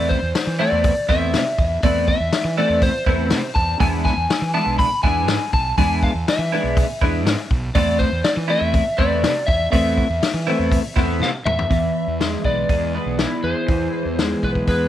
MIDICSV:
0, 0, Header, 1, 5, 480
1, 0, Start_track
1, 0, Tempo, 494234
1, 1776, Time_signature, 4, 2, 24, 8
1, 14452, End_track
2, 0, Start_track
2, 0, Title_t, "Electric slide guitar"
2, 0, Program_c, 0, 29
2, 0, Note_on_c, 0, 74, 86
2, 89, Note_on_c, 0, 72, 84
2, 110, Note_off_c, 0, 74, 0
2, 575, Note_off_c, 0, 72, 0
2, 579, Note_on_c, 0, 74, 89
2, 1060, Note_on_c, 0, 76, 87
2, 1073, Note_off_c, 0, 74, 0
2, 1785, Note_on_c, 0, 74, 79
2, 1800, Note_off_c, 0, 76, 0
2, 2022, Note_on_c, 0, 76, 82
2, 2027, Note_off_c, 0, 74, 0
2, 2505, Note_off_c, 0, 76, 0
2, 2509, Note_on_c, 0, 74, 84
2, 2725, Note_off_c, 0, 74, 0
2, 2745, Note_on_c, 0, 72, 91
2, 3446, Note_on_c, 0, 81, 97
2, 3481, Note_off_c, 0, 72, 0
2, 3689, Note_off_c, 0, 81, 0
2, 3693, Note_on_c, 0, 80, 94
2, 3758, Note_off_c, 0, 80, 0
2, 3931, Note_on_c, 0, 80, 97
2, 4407, Note_off_c, 0, 80, 0
2, 4411, Note_on_c, 0, 81, 84
2, 4644, Note_off_c, 0, 81, 0
2, 4648, Note_on_c, 0, 83, 106
2, 4882, Note_off_c, 0, 83, 0
2, 4886, Note_on_c, 0, 80, 104
2, 5371, Note_off_c, 0, 80, 0
2, 5375, Note_on_c, 0, 81, 96
2, 5608, Note_off_c, 0, 81, 0
2, 5612, Note_on_c, 0, 80, 94
2, 5834, Note_off_c, 0, 80, 0
2, 5862, Note_on_c, 0, 77, 80
2, 5925, Note_off_c, 0, 77, 0
2, 6110, Note_on_c, 0, 76, 73
2, 7259, Note_off_c, 0, 76, 0
2, 7525, Note_on_c, 0, 74, 86
2, 7760, Note_on_c, 0, 72, 88
2, 7773, Note_off_c, 0, 74, 0
2, 8005, Note_on_c, 0, 74, 90
2, 8010, Note_off_c, 0, 72, 0
2, 8070, Note_off_c, 0, 74, 0
2, 8254, Note_on_c, 0, 76, 110
2, 8724, Note_on_c, 0, 74, 102
2, 8743, Note_off_c, 0, 76, 0
2, 9193, Note_on_c, 0, 76, 109
2, 9218, Note_off_c, 0, 74, 0
2, 9426, Note_off_c, 0, 76, 0
2, 9437, Note_on_c, 0, 76, 94
2, 10841, Note_off_c, 0, 76, 0
2, 10904, Note_on_c, 0, 77, 84
2, 10966, Note_off_c, 0, 77, 0
2, 11125, Note_on_c, 0, 76, 91
2, 12090, Note_off_c, 0, 76, 0
2, 12094, Note_on_c, 0, 74, 76
2, 13053, Note_on_c, 0, 72, 86
2, 13081, Note_off_c, 0, 74, 0
2, 14024, Note_off_c, 0, 72, 0
2, 14027, Note_on_c, 0, 71, 76
2, 14090, Note_off_c, 0, 71, 0
2, 14265, Note_on_c, 0, 71, 80
2, 14452, Note_off_c, 0, 71, 0
2, 14452, End_track
3, 0, Start_track
3, 0, Title_t, "Clean electric guitar"
3, 0, Program_c, 1, 27
3, 0, Note_on_c, 1, 57, 83
3, 0, Note_on_c, 1, 59, 97
3, 0, Note_on_c, 1, 60, 86
3, 0, Note_on_c, 1, 64, 97
3, 167, Note_off_c, 1, 57, 0
3, 169, Note_off_c, 1, 60, 0
3, 170, Note_off_c, 1, 59, 0
3, 170, Note_off_c, 1, 64, 0
3, 574, Note_on_c, 1, 64, 95
3, 583, Note_on_c, 1, 59, 81
3, 583, Note_on_c, 1, 60, 78
3, 587, Note_on_c, 1, 57, 79
3, 887, Note_off_c, 1, 64, 0
3, 892, Note_off_c, 1, 59, 0
3, 892, Note_off_c, 1, 60, 0
3, 894, Note_off_c, 1, 57, 0
3, 1055, Note_on_c, 1, 64, 85
3, 1057, Note_on_c, 1, 59, 93
3, 1062, Note_on_c, 1, 60, 76
3, 1064, Note_on_c, 1, 57, 67
3, 1368, Note_off_c, 1, 64, 0
3, 1369, Note_off_c, 1, 59, 0
3, 1372, Note_off_c, 1, 60, 0
3, 1373, Note_off_c, 1, 57, 0
3, 1791, Note_on_c, 1, 57, 91
3, 1791, Note_on_c, 1, 60, 82
3, 1799, Note_on_c, 1, 59, 92
3, 1799, Note_on_c, 1, 64, 105
3, 2095, Note_off_c, 1, 57, 0
3, 2096, Note_off_c, 1, 60, 0
3, 2099, Note_off_c, 1, 59, 0
3, 2100, Note_off_c, 1, 64, 0
3, 2502, Note_on_c, 1, 64, 81
3, 2506, Note_on_c, 1, 59, 76
3, 2509, Note_on_c, 1, 60, 78
3, 2510, Note_on_c, 1, 57, 82
3, 2810, Note_off_c, 1, 64, 0
3, 2812, Note_off_c, 1, 59, 0
3, 2814, Note_off_c, 1, 57, 0
3, 2814, Note_off_c, 1, 60, 0
3, 2977, Note_on_c, 1, 64, 85
3, 2979, Note_on_c, 1, 59, 83
3, 2981, Note_on_c, 1, 60, 83
3, 2987, Note_on_c, 1, 57, 63
3, 3288, Note_off_c, 1, 64, 0
3, 3289, Note_off_c, 1, 59, 0
3, 3290, Note_off_c, 1, 60, 0
3, 3292, Note_off_c, 1, 57, 0
3, 3687, Note_on_c, 1, 56, 78
3, 3689, Note_on_c, 1, 62, 80
3, 3694, Note_on_c, 1, 64, 92
3, 3696, Note_on_c, 1, 59, 105
3, 4002, Note_off_c, 1, 56, 0
3, 4003, Note_off_c, 1, 62, 0
3, 4006, Note_off_c, 1, 59, 0
3, 4006, Note_off_c, 1, 64, 0
3, 4408, Note_on_c, 1, 64, 77
3, 4410, Note_on_c, 1, 59, 84
3, 4414, Note_on_c, 1, 62, 80
3, 4424, Note_on_c, 1, 56, 83
3, 4721, Note_off_c, 1, 64, 0
3, 4723, Note_off_c, 1, 59, 0
3, 4724, Note_off_c, 1, 62, 0
3, 4730, Note_off_c, 1, 56, 0
3, 4891, Note_on_c, 1, 64, 95
3, 4893, Note_on_c, 1, 59, 83
3, 4898, Note_on_c, 1, 62, 85
3, 4905, Note_on_c, 1, 56, 66
3, 5203, Note_off_c, 1, 64, 0
3, 5204, Note_off_c, 1, 59, 0
3, 5206, Note_off_c, 1, 62, 0
3, 5210, Note_off_c, 1, 56, 0
3, 5611, Note_on_c, 1, 56, 78
3, 5615, Note_on_c, 1, 62, 89
3, 5621, Note_on_c, 1, 59, 85
3, 5626, Note_on_c, 1, 64, 100
3, 5922, Note_off_c, 1, 56, 0
3, 5924, Note_off_c, 1, 62, 0
3, 5927, Note_off_c, 1, 59, 0
3, 5930, Note_off_c, 1, 64, 0
3, 6336, Note_on_c, 1, 64, 89
3, 6347, Note_on_c, 1, 59, 82
3, 6347, Note_on_c, 1, 62, 83
3, 6352, Note_on_c, 1, 56, 76
3, 6644, Note_off_c, 1, 64, 0
3, 6649, Note_off_c, 1, 59, 0
3, 6650, Note_off_c, 1, 62, 0
3, 6652, Note_off_c, 1, 56, 0
3, 6812, Note_on_c, 1, 64, 85
3, 6815, Note_on_c, 1, 59, 86
3, 6823, Note_on_c, 1, 62, 84
3, 6825, Note_on_c, 1, 56, 70
3, 7122, Note_off_c, 1, 64, 0
3, 7123, Note_off_c, 1, 59, 0
3, 7127, Note_off_c, 1, 62, 0
3, 7128, Note_off_c, 1, 56, 0
3, 7530, Note_on_c, 1, 57, 77
3, 7537, Note_on_c, 1, 60, 87
3, 7541, Note_on_c, 1, 59, 98
3, 7541, Note_on_c, 1, 64, 91
3, 7840, Note_off_c, 1, 57, 0
3, 7843, Note_off_c, 1, 60, 0
3, 7845, Note_off_c, 1, 64, 0
3, 7846, Note_off_c, 1, 59, 0
3, 8234, Note_on_c, 1, 64, 91
3, 8238, Note_on_c, 1, 59, 80
3, 8245, Note_on_c, 1, 60, 80
3, 8250, Note_on_c, 1, 57, 78
3, 8551, Note_off_c, 1, 64, 0
3, 8553, Note_off_c, 1, 59, 0
3, 8557, Note_off_c, 1, 60, 0
3, 8559, Note_off_c, 1, 57, 0
3, 8720, Note_on_c, 1, 64, 78
3, 8725, Note_on_c, 1, 59, 83
3, 8726, Note_on_c, 1, 60, 85
3, 8730, Note_on_c, 1, 57, 65
3, 9034, Note_off_c, 1, 64, 0
3, 9037, Note_off_c, 1, 59, 0
3, 9037, Note_off_c, 1, 60, 0
3, 9039, Note_off_c, 1, 57, 0
3, 9440, Note_on_c, 1, 57, 83
3, 9445, Note_on_c, 1, 60, 91
3, 9446, Note_on_c, 1, 59, 86
3, 9448, Note_on_c, 1, 64, 97
3, 9753, Note_off_c, 1, 57, 0
3, 9756, Note_off_c, 1, 60, 0
3, 9757, Note_off_c, 1, 59, 0
3, 9757, Note_off_c, 1, 64, 0
3, 10166, Note_on_c, 1, 64, 84
3, 10173, Note_on_c, 1, 59, 86
3, 10175, Note_on_c, 1, 60, 85
3, 10180, Note_on_c, 1, 57, 81
3, 10477, Note_off_c, 1, 64, 0
3, 10480, Note_off_c, 1, 59, 0
3, 10481, Note_off_c, 1, 60, 0
3, 10484, Note_off_c, 1, 57, 0
3, 10642, Note_on_c, 1, 64, 89
3, 10650, Note_on_c, 1, 59, 87
3, 10650, Note_on_c, 1, 60, 76
3, 10656, Note_on_c, 1, 57, 63
3, 10955, Note_off_c, 1, 64, 0
3, 10959, Note_off_c, 1, 59, 0
3, 10959, Note_off_c, 1, 60, 0
3, 10962, Note_off_c, 1, 57, 0
3, 11362, Note_on_c, 1, 40, 65
3, 11853, Note_on_c, 1, 56, 65
3, 12095, Note_on_c, 1, 59, 60
3, 12332, Note_on_c, 1, 68, 68
3, 12572, Note_off_c, 1, 59, 0
3, 12576, Note_on_c, 1, 59, 63
3, 12808, Note_on_c, 1, 64, 58
3, 13055, Note_off_c, 1, 68, 0
3, 13059, Note_on_c, 1, 68, 66
3, 13293, Note_off_c, 1, 40, 0
3, 13297, Note_on_c, 1, 40, 64
3, 13784, Note_off_c, 1, 56, 0
3, 13787, Note_on_c, 1, 56, 62
3, 14028, Note_off_c, 1, 59, 0
3, 14032, Note_on_c, 1, 59, 62
3, 14263, Note_off_c, 1, 68, 0
3, 14267, Note_on_c, 1, 68, 64
3, 14452, Note_off_c, 1, 40, 0
3, 14452, Note_off_c, 1, 56, 0
3, 14452, Note_off_c, 1, 59, 0
3, 14452, Note_off_c, 1, 64, 0
3, 14452, Note_off_c, 1, 68, 0
3, 14452, End_track
4, 0, Start_track
4, 0, Title_t, "Fingered electric bass"
4, 0, Program_c, 2, 33
4, 0, Note_on_c, 2, 40, 90
4, 134, Note_off_c, 2, 40, 0
4, 217, Note_on_c, 2, 40, 85
4, 307, Note_off_c, 2, 40, 0
4, 455, Note_on_c, 2, 52, 89
4, 636, Note_off_c, 2, 52, 0
4, 697, Note_on_c, 2, 40, 93
4, 877, Note_off_c, 2, 40, 0
4, 1060, Note_on_c, 2, 40, 78
4, 1300, Note_on_c, 2, 48, 102
4, 1315, Note_off_c, 2, 40, 0
4, 1389, Note_off_c, 2, 48, 0
4, 1539, Note_on_c, 2, 40, 90
4, 1719, Note_off_c, 2, 40, 0
4, 1781, Note_on_c, 2, 40, 104
4, 2050, Note_off_c, 2, 40, 0
4, 2139, Note_on_c, 2, 40, 85
4, 2228, Note_off_c, 2, 40, 0
4, 2374, Note_on_c, 2, 52, 82
4, 2555, Note_off_c, 2, 52, 0
4, 2617, Note_on_c, 2, 40, 82
4, 2796, Note_off_c, 2, 40, 0
4, 2978, Note_on_c, 2, 40, 89
4, 3211, Note_on_c, 2, 48, 105
4, 3225, Note_off_c, 2, 40, 0
4, 3302, Note_off_c, 2, 48, 0
4, 3454, Note_on_c, 2, 40, 79
4, 3634, Note_off_c, 2, 40, 0
4, 3698, Note_on_c, 2, 40, 98
4, 3966, Note_off_c, 2, 40, 0
4, 4045, Note_on_c, 2, 40, 82
4, 4138, Note_off_c, 2, 40, 0
4, 4289, Note_on_c, 2, 52, 84
4, 4471, Note_off_c, 2, 52, 0
4, 4529, Note_on_c, 2, 35, 84
4, 4710, Note_off_c, 2, 35, 0
4, 4891, Note_on_c, 2, 40, 91
4, 5118, Note_off_c, 2, 40, 0
4, 5118, Note_on_c, 2, 44, 102
4, 5213, Note_off_c, 2, 44, 0
4, 5373, Note_on_c, 2, 35, 88
4, 5552, Note_off_c, 2, 35, 0
4, 5615, Note_on_c, 2, 40, 104
4, 5884, Note_off_c, 2, 40, 0
4, 5965, Note_on_c, 2, 40, 80
4, 6056, Note_off_c, 2, 40, 0
4, 6201, Note_on_c, 2, 52, 81
4, 6384, Note_off_c, 2, 52, 0
4, 6445, Note_on_c, 2, 35, 88
4, 6626, Note_off_c, 2, 35, 0
4, 6813, Note_on_c, 2, 40, 86
4, 7045, Note_off_c, 2, 40, 0
4, 7045, Note_on_c, 2, 44, 110
4, 7136, Note_off_c, 2, 44, 0
4, 7292, Note_on_c, 2, 35, 101
4, 7470, Note_off_c, 2, 35, 0
4, 7528, Note_on_c, 2, 40, 104
4, 7798, Note_off_c, 2, 40, 0
4, 7885, Note_on_c, 2, 40, 84
4, 7976, Note_off_c, 2, 40, 0
4, 8127, Note_on_c, 2, 52, 88
4, 8306, Note_off_c, 2, 52, 0
4, 8361, Note_on_c, 2, 40, 84
4, 8543, Note_off_c, 2, 40, 0
4, 8728, Note_on_c, 2, 40, 89
4, 8964, Note_on_c, 2, 48, 107
4, 8979, Note_off_c, 2, 40, 0
4, 9054, Note_off_c, 2, 48, 0
4, 9209, Note_on_c, 2, 40, 103
4, 9387, Note_off_c, 2, 40, 0
4, 9450, Note_on_c, 2, 40, 104
4, 9718, Note_off_c, 2, 40, 0
4, 9805, Note_on_c, 2, 40, 84
4, 9894, Note_off_c, 2, 40, 0
4, 10041, Note_on_c, 2, 52, 81
4, 10222, Note_off_c, 2, 52, 0
4, 10285, Note_on_c, 2, 40, 84
4, 10465, Note_off_c, 2, 40, 0
4, 10648, Note_on_c, 2, 40, 90
4, 10877, Note_on_c, 2, 48, 99
4, 10892, Note_off_c, 2, 40, 0
4, 10970, Note_off_c, 2, 48, 0
4, 11124, Note_on_c, 2, 40, 94
4, 11304, Note_off_c, 2, 40, 0
4, 11367, Note_on_c, 2, 40, 86
4, 11546, Note_off_c, 2, 40, 0
4, 11725, Note_on_c, 2, 40, 75
4, 11996, Note_off_c, 2, 40, 0
4, 12087, Note_on_c, 2, 35, 77
4, 12267, Note_off_c, 2, 35, 0
4, 12326, Note_on_c, 2, 40, 82
4, 12597, Note_off_c, 2, 40, 0
4, 12684, Note_on_c, 2, 35, 74
4, 12866, Note_off_c, 2, 35, 0
4, 13046, Note_on_c, 2, 40, 73
4, 13137, Note_off_c, 2, 40, 0
4, 13291, Note_on_c, 2, 40, 97
4, 13471, Note_off_c, 2, 40, 0
4, 13647, Note_on_c, 2, 40, 73
4, 13920, Note_off_c, 2, 40, 0
4, 14015, Note_on_c, 2, 35, 67
4, 14195, Note_off_c, 2, 35, 0
4, 14253, Note_on_c, 2, 40, 92
4, 14452, Note_off_c, 2, 40, 0
4, 14452, End_track
5, 0, Start_track
5, 0, Title_t, "Drums"
5, 103, Note_on_c, 9, 36, 68
5, 200, Note_off_c, 9, 36, 0
5, 340, Note_on_c, 9, 46, 64
5, 341, Note_on_c, 9, 38, 110
5, 437, Note_off_c, 9, 46, 0
5, 438, Note_off_c, 9, 38, 0
5, 813, Note_on_c, 9, 46, 57
5, 819, Note_on_c, 9, 36, 110
5, 910, Note_off_c, 9, 46, 0
5, 916, Note_off_c, 9, 36, 0
5, 1051, Note_on_c, 9, 38, 33
5, 1058, Note_on_c, 9, 36, 79
5, 1148, Note_off_c, 9, 38, 0
5, 1155, Note_off_c, 9, 36, 0
5, 1298, Note_on_c, 9, 46, 54
5, 1299, Note_on_c, 9, 38, 97
5, 1395, Note_off_c, 9, 46, 0
5, 1396, Note_off_c, 9, 38, 0
5, 1540, Note_on_c, 9, 36, 88
5, 1637, Note_off_c, 9, 36, 0
5, 1775, Note_on_c, 9, 46, 50
5, 1780, Note_on_c, 9, 36, 109
5, 1872, Note_off_c, 9, 46, 0
5, 1878, Note_off_c, 9, 36, 0
5, 2018, Note_on_c, 9, 36, 74
5, 2115, Note_off_c, 9, 36, 0
5, 2258, Note_on_c, 9, 46, 58
5, 2259, Note_on_c, 9, 38, 106
5, 2355, Note_off_c, 9, 46, 0
5, 2356, Note_off_c, 9, 38, 0
5, 2735, Note_on_c, 9, 46, 48
5, 2738, Note_on_c, 9, 36, 95
5, 2832, Note_off_c, 9, 46, 0
5, 2835, Note_off_c, 9, 36, 0
5, 2976, Note_on_c, 9, 36, 74
5, 3073, Note_off_c, 9, 36, 0
5, 3208, Note_on_c, 9, 46, 56
5, 3209, Note_on_c, 9, 38, 103
5, 3305, Note_off_c, 9, 46, 0
5, 3306, Note_off_c, 9, 38, 0
5, 3454, Note_on_c, 9, 36, 79
5, 3551, Note_off_c, 9, 36, 0
5, 3694, Note_on_c, 9, 36, 107
5, 3694, Note_on_c, 9, 46, 49
5, 3791, Note_off_c, 9, 36, 0
5, 3791, Note_off_c, 9, 46, 0
5, 3935, Note_on_c, 9, 36, 69
5, 3940, Note_on_c, 9, 38, 30
5, 4032, Note_off_c, 9, 36, 0
5, 4037, Note_off_c, 9, 38, 0
5, 4178, Note_on_c, 9, 46, 60
5, 4179, Note_on_c, 9, 38, 119
5, 4275, Note_off_c, 9, 46, 0
5, 4276, Note_off_c, 9, 38, 0
5, 4652, Note_on_c, 9, 36, 106
5, 4657, Note_on_c, 9, 46, 53
5, 4749, Note_off_c, 9, 36, 0
5, 4754, Note_off_c, 9, 46, 0
5, 4891, Note_on_c, 9, 36, 81
5, 4988, Note_off_c, 9, 36, 0
5, 5129, Note_on_c, 9, 38, 114
5, 5129, Note_on_c, 9, 46, 56
5, 5226, Note_off_c, 9, 46, 0
5, 5227, Note_off_c, 9, 38, 0
5, 5372, Note_on_c, 9, 36, 85
5, 5470, Note_off_c, 9, 36, 0
5, 5612, Note_on_c, 9, 36, 106
5, 5612, Note_on_c, 9, 46, 57
5, 5709, Note_off_c, 9, 36, 0
5, 5709, Note_off_c, 9, 46, 0
5, 5853, Note_on_c, 9, 36, 74
5, 5950, Note_off_c, 9, 36, 0
5, 6100, Note_on_c, 9, 46, 61
5, 6101, Note_on_c, 9, 38, 115
5, 6197, Note_off_c, 9, 46, 0
5, 6198, Note_off_c, 9, 38, 0
5, 6573, Note_on_c, 9, 36, 108
5, 6575, Note_on_c, 9, 46, 60
5, 6671, Note_off_c, 9, 36, 0
5, 6672, Note_off_c, 9, 46, 0
5, 6813, Note_on_c, 9, 36, 78
5, 6910, Note_off_c, 9, 36, 0
5, 7056, Note_on_c, 9, 46, 54
5, 7057, Note_on_c, 9, 38, 98
5, 7153, Note_off_c, 9, 46, 0
5, 7154, Note_off_c, 9, 38, 0
5, 7291, Note_on_c, 9, 36, 94
5, 7388, Note_off_c, 9, 36, 0
5, 7525, Note_on_c, 9, 46, 54
5, 7529, Note_on_c, 9, 36, 112
5, 7622, Note_off_c, 9, 46, 0
5, 7626, Note_off_c, 9, 36, 0
5, 7769, Note_on_c, 9, 36, 71
5, 7866, Note_off_c, 9, 36, 0
5, 8006, Note_on_c, 9, 46, 53
5, 8007, Note_on_c, 9, 38, 110
5, 8103, Note_off_c, 9, 46, 0
5, 8104, Note_off_c, 9, 38, 0
5, 8483, Note_on_c, 9, 46, 49
5, 8488, Note_on_c, 9, 36, 107
5, 8580, Note_off_c, 9, 46, 0
5, 8585, Note_off_c, 9, 36, 0
5, 8727, Note_on_c, 9, 36, 74
5, 8824, Note_off_c, 9, 36, 0
5, 8972, Note_on_c, 9, 46, 55
5, 8973, Note_on_c, 9, 38, 108
5, 9069, Note_off_c, 9, 46, 0
5, 9070, Note_off_c, 9, 38, 0
5, 9208, Note_on_c, 9, 36, 90
5, 9305, Note_off_c, 9, 36, 0
5, 9448, Note_on_c, 9, 36, 102
5, 9451, Note_on_c, 9, 46, 57
5, 9545, Note_off_c, 9, 36, 0
5, 9548, Note_off_c, 9, 46, 0
5, 9688, Note_on_c, 9, 36, 74
5, 9785, Note_off_c, 9, 36, 0
5, 9932, Note_on_c, 9, 46, 65
5, 9933, Note_on_c, 9, 38, 109
5, 10029, Note_off_c, 9, 46, 0
5, 10030, Note_off_c, 9, 38, 0
5, 10407, Note_on_c, 9, 36, 96
5, 10413, Note_on_c, 9, 46, 62
5, 10504, Note_off_c, 9, 36, 0
5, 10510, Note_off_c, 9, 46, 0
5, 10648, Note_on_c, 9, 36, 82
5, 10655, Note_on_c, 9, 38, 35
5, 10745, Note_off_c, 9, 36, 0
5, 10752, Note_off_c, 9, 38, 0
5, 10898, Note_on_c, 9, 38, 58
5, 10995, Note_off_c, 9, 38, 0
5, 11133, Note_on_c, 9, 45, 91
5, 11230, Note_off_c, 9, 45, 0
5, 11254, Note_on_c, 9, 43, 90
5, 11351, Note_off_c, 9, 43, 0
5, 11369, Note_on_c, 9, 36, 92
5, 11378, Note_on_c, 9, 46, 42
5, 11466, Note_off_c, 9, 36, 0
5, 11475, Note_off_c, 9, 46, 0
5, 11854, Note_on_c, 9, 46, 47
5, 11855, Note_on_c, 9, 38, 108
5, 11951, Note_off_c, 9, 46, 0
5, 11952, Note_off_c, 9, 38, 0
5, 11970, Note_on_c, 9, 38, 27
5, 12067, Note_off_c, 9, 38, 0
5, 12086, Note_on_c, 9, 36, 73
5, 12183, Note_off_c, 9, 36, 0
5, 12327, Note_on_c, 9, 36, 90
5, 12327, Note_on_c, 9, 46, 45
5, 12424, Note_off_c, 9, 46, 0
5, 12425, Note_off_c, 9, 36, 0
5, 12807, Note_on_c, 9, 46, 48
5, 12808, Note_on_c, 9, 38, 107
5, 12904, Note_off_c, 9, 46, 0
5, 12905, Note_off_c, 9, 38, 0
5, 13287, Note_on_c, 9, 46, 45
5, 13291, Note_on_c, 9, 36, 90
5, 13384, Note_off_c, 9, 46, 0
5, 13388, Note_off_c, 9, 36, 0
5, 13779, Note_on_c, 9, 46, 52
5, 13780, Note_on_c, 9, 38, 116
5, 13876, Note_off_c, 9, 46, 0
5, 13877, Note_off_c, 9, 38, 0
5, 14015, Note_on_c, 9, 36, 62
5, 14112, Note_off_c, 9, 36, 0
5, 14135, Note_on_c, 9, 36, 71
5, 14232, Note_off_c, 9, 36, 0
5, 14250, Note_on_c, 9, 46, 43
5, 14254, Note_on_c, 9, 36, 86
5, 14347, Note_off_c, 9, 46, 0
5, 14351, Note_off_c, 9, 36, 0
5, 14452, End_track
0, 0, End_of_file